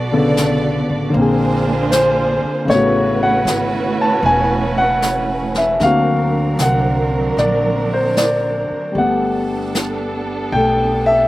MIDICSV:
0, 0, Header, 1, 6, 480
1, 0, Start_track
1, 0, Tempo, 774194
1, 1663, Time_signature, 4, 2, 24, 8
1, 2625, Tempo, 786370
1, 6925, End_track
2, 0, Start_track
2, 0, Title_t, "Grand piano"
2, 0, Program_c, 0, 0
2, 0, Control_c, 0, 64, 127
2, 0, Note_on_c, 0, 74, 69
2, 76, Note_on_c, 0, 50, 46
2, 80, Note_on_c, 0, 59, 39
2, 82, Note_on_c, 0, 49, 40
2, 83, Note_on_c, 0, 69, 52
2, 527, Note_off_c, 0, 74, 0
2, 673, Note_off_c, 0, 50, 0
2, 682, Note_on_c, 0, 50, 46
2, 702, Note_on_c, 0, 58, 42
2, 706, Note_off_c, 0, 59, 0
2, 707, Note_off_c, 0, 49, 0
2, 708, Note_off_c, 0, 69, 0
2, 709, Control_c, 0, 64, 0
2, 725, Note_on_c, 0, 60, 41
2, 750, Note_on_c, 0, 68, 51
2, 823, Control_c, 0, 64, 127
2, 1188, Note_on_c, 0, 72, 74
2, 1643, Note_on_c, 0, 49, 44
2, 1653, Note_off_c, 0, 50, 0
2, 1662, Note_on_c, 0, 57, 39
2, 1663, Note_off_c, 0, 58, 0
2, 1672, Control_c, 0, 64, 0
2, 1672, Note_on_c, 0, 73, 82
2, 1675, Note_off_c, 0, 60, 0
2, 1680, Note_off_c, 0, 72, 0
2, 1687, Note_on_c, 0, 59, 39
2, 1688, Note_off_c, 0, 68, 0
2, 1708, Note_on_c, 0, 66, 45
2, 1775, Control_c, 0, 64, 127
2, 1972, Note_off_c, 0, 73, 0
2, 2001, Note_on_c, 0, 78, 83
2, 2489, Note_on_c, 0, 81, 77
2, 2492, Note_off_c, 0, 78, 0
2, 2625, Note_off_c, 0, 81, 0
2, 2639, Note_on_c, 0, 80, 84
2, 2957, Note_on_c, 0, 78, 88
2, 2966, Note_off_c, 0, 80, 0
2, 3444, Note_on_c, 0, 76, 68
2, 3448, Note_off_c, 0, 78, 0
2, 3573, Note_off_c, 0, 49, 0
2, 3580, Note_off_c, 0, 76, 0
2, 3581, Note_on_c, 0, 50, 43
2, 3583, Note_off_c, 0, 57, 0
2, 3590, Control_c, 0, 64, 0
2, 3594, Note_on_c, 0, 58, 41
2, 3595, Note_off_c, 0, 59, 0
2, 3599, Note_on_c, 0, 77, 79
2, 3600, Note_on_c, 0, 60, 38
2, 3606, Note_off_c, 0, 66, 0
2, 3615, Note_on_c, 0, 66, 46
2, 3699, Control_c, 0, 64, 127
2, 4045, Note_off_c, 0, 77, 0
2, 4082, Note_on_c, 0, 78, 74
2, 4527, Note_off_c, 0, 78, 0
2, 4549, Note_on_c, 0, 74, 67
2, 4850, Note_off_c, 0, 74, 0
2, 4884, Note_on_c, 0, 72, 66
2, 5030, Note_on_c, 0, 74, 61
2, 5036, Note_off_c, 0, 72, 0
2, 5483, Note_on_c, 0, 55, 40
2, 5504, Note_on_c, 0, 57, 34
2, 5507, Note_off_c, 0, 50, 0
2, 5513, Note_off_c, 0, 58, 0
2, 5516, Note_off_c, 0, 60, 0
2, 5517, Control_c, 0, 64, 0
2, 5523, Note_on_c, 0, 78, 69
2, 5524, Note_off_c, 0, 66, 0
2, 5525, Note_off_c, 0, 74, 0
2, 5525, Note_on_c, 0, 59, 34
2, 5546, Note_on_c, 0, 67, 43
2, 5640, Control_c, 0, 64, 127
2, 6299, Note_off_c, 0, 78, 0
2, 6465, Note_on_c, 0, 79, 78
2, 6468, Note_off_c, 0, 57, 0
2, 6477, Note_on_c, 0, 57, 34
2, 6492, Note_on_c, 0, 69, 39
2, 6793, Note_on_c, 0, 76, 91
2, 6801, Note_off_c, 0, 79, 0
2, 6925, Note_off_c, 0, 55, 0
2, 6925, Note_off_c, 0, 57, 0
2, 6925, Note_off_c, 0, 59, 0
2, 6925, Note_off_c, 0, 67, 0
2, 6925, Note_off_c, 0, 69, 0
2, 6925, Note_off_c, 0, 76, 0
2, 6925, End_track
3, 0, Start_track
3, 0, Title_t, "String section"
3, 0, Program_c, 1, 48
3, 0, Note_on_c, 1, 59, 55
3, 0, Note_on_c, 1, 66, 52
3, 0, Note_on_c, 1, 69, 49
3, 0, Note_on_c, 1, 74, 62
3, 679, Note_off_c, 1, 66, 0
3, 688, Note_on_c, 1, 62, 54
3, 690, Note_off_c, 1, 59, 0
3, 690, Note_off_c, 1, 69, 0
3, 690, Note_on_c, 1, 58, 60
3, 690, Note_on_c, 1, 68, 59
3, 690, Note_on_c, 1, 72, 68
3, 691, Note_off_c, 1, 74, 0
3, 694, Note_on_c, 1, 65, 57
3, 1647, Note_off_c, 1, 62, 0
3, 1647, Note_on_c, 1, 71, 66
3, 1648, Note_off_c, 1, 58, 0
3, 1648, Note_off_c, 1, 68, 0
3, 1648, Note_off_c, 1, 72, 0
3, 1650, Note_off_c, 1, 65, 0
3, 1650, Note_on_c, 1, 64, 55
3, 1651, Note_on_c, 1, 57, 64
3, 1651, Note_on_c, 1, 66, 53
3, 1653, Note_on_c, 1, 61, 56
3, 3556, Note_off_c, 1, 71, 0
3, 3558, Note_off_c, 1, 57, 0
3, 3558, Note_off_c, 1, 64, 0
3, 3558, Note_off_c, 1, 66, 0
3, 3559, Note_off_c, 1, 61, 0
3, 3580, Note_on_c, 1, 62, 52
3, 3580, Note_on_c, 1, 70, 69
3, 3584, Note_on_c, 1, 54, 60
3, 3589, Note_on_c, 1, 60, 51
3, 5487, Note_off_c, 1, 62, 0
3, 5487, Note_off_c, 1, 70, 0
3, 5489, Note_off_c, 1, 54, 0
3, 5491, Note_off_c, 1, 60, 0
3, 5495, Note_on_c, 1, 69, 60
3, 5498, Note_on_c, 1, 59, 52
3, 5501, Note_on_c, 1, 62, 49
3, 6925, Note_off_c, 1, 59, 0
3, 6925, Note_off_c, 1, 62, 0
3, 6925, Note_off_c, 1, 69, 0
3, 6925, End_track
4, 0, Start_track
4, 0, Title_t, "Upright bass"
4, 0, Program_c, 2, 32
4, 0, Note_on_c, 2, 35, 64
4, 521, Note_off_c, 2, 35, 0
4, 553, Note_on_c, 2, 33, 53
4, 693, Note_off_c, 2, 33, 0
4, 707, Note_on_c, 2, 34, 75
4, 1488, Note_off_c, 2, 34, 0
4, 1662, Note_on_c, 2, 33, 70
4, 2119, Note_off_c, 2, 33, 0
4, 2139, Note_on_c, 2, 32, 59
4, 2599, Note_off_c, 2, 32, 0
4, 2620, Note_on_c, 2, 28, 75
4, 3556, Note_off_c, 2, 28, 0
4, 3580, Note_on_c, 2, 38, 70
4, 4036, Note_off_c, 2, 38, 0
4, 4052, Note_on_c, 2, 36, 60
4, 4512, Note_off_c, 2, 36, 0
4, 4538, Note_on_c, 2, 34, 66
4, 5328, Note_off_c, 2, 34, 0
4, 5504, Note_on_c, 2, 31, 60
4, 6442, Note_off_c, 2, 31, 0
4, 6463, Note_on_c, 2, 35, 66
4, 6925, Note_off_c, 2, 35, 0
4, 6925, End_track
5, 0, Start_track
5, 0, Title_t, "Muted upright bass strokes"
5, 1510, Note_on_c, 9, 29, 32
5, 1572, Note_off_c, 9, 29, 0
5, 5353, Note_on_c, 9, 29, 32
5, 5414, Note_off_c, 9, 29, 0
5, 6925, End_track
6, 0, Start_track
6, 0, Title_t, "Drums"
6, 229, Note_on_c, 9, 38, 38
6, 229, Note_on_c, 9, 44, 50
6, 291, Note_off_c, 9, 38, 0
6, 291, Note_off_c, 9, 44, 0
6, 702, Note_on_c, 9, 25, 36
6, 1189, Note_on_c, 9, 38, 39
6, 1189, Note_on_c, 9, 44, 46
6, 1251, Note_off_c, 9, 38, 0
6, 1251, Note_off_c, 9, 44, 0
6, 1674, Note_off_c, 9, 25, 0
6, 1674, Note_on_c, 9, 25, 27
6, 1674, Note_on_c, 9, 38, 23
6, 1736, Note_off_c, 9, 38, 0
6, 2150, Note_on_c, 9, 38, 41
6, 2150, Note_on_c, 9, 44, 49
6, 2212, Note_off_c, 9, 38, 0
6, 2212, Note_off_c, 9, 44, 0
6, 2629, Note_off_c, 9, 25, 0
6, 2629, Note_on_c, 9, 25, 29
6, 3106, Note_on_c, 9, 38, 38
6, 3106, Note_on_c, 9, 44, 50
6, 3167, Note_off_c, 9, 38, 0
6, 3167, Note_off_c, 9, 44, 0
6, 3424, Note_on_c, 9, 38, 23
6, 3485, Note_off_c, 9, 38, 0
6, 3580, Note_off_c, 9, 25, 0
6, 3580, Note_on_c, 9, 25, 30
6, 3580, Note_on_c, 9, 38, 24
6, 3641, Note_off_c, 9, 38, 0
6, 4061, Note_on_c, 9, 38, 41
6, 4061, Note_on_c, 9, 44, 50
6, 4122, Note_off_c, 9, 38, 0
6, 4122, Note_off_c, 9, 44, 0
6, 4544, Note_off_c, 9, 25, 0
6, 4544, Note_on_c, 9, 25, 30
6, 4544, Note_on_c, 9, 38, 23
6, 4605, Note_off_c, 9, 38, 0
6, 5025, Note_on_c, 9, 38, 37
6, 5025, Note_on_c, 9, 44, 48
6, 5086, Note_off_c, 9, 38, 0
6, 5086, Note_off_c, 9, 44, 0
6, 5508, Note_off_c, 9, 25, 0
6, 5508, Note_on_c, 9, 25, 30
6, 5990, Note_on_c, 9, 38, 43
6, 5990, Note_on_c, 9, 44, 54
6, 6051, Note_off_c, 9, 38, 0
6, 6051, Note_off_c, 9, 44, 0
6, 6464, Note_off_c, 9, 25, 0
6, 6464, Note_on_c, 9, 25, 26
6, 6925, Note_off_c, 9, 25, 0
6, 6925, End_track
0, 0, End_of_file